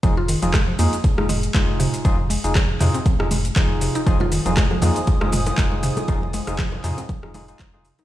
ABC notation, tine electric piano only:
X:1
M:4/4
L:1/16
Q:"Swing 16ths" 1/4=119
K:Fm
V:1 name="Tine electric piano"
[EFA] z2 [EFA] z2 [EFA] z2 [EFA] z2 [EFA]4 | [EFA] z2 [EFA] z2 [EFA] z2 [EFA] z2 [EFA]4 | [EFA] z2 [EFA] z2 [EFA] z2 [EFA] z2 [EFA]4 | [EFA] z2 [EFA] z2 [EFA] z2 [EFA] [EFA] [EFA]2 [EFA] z2 |]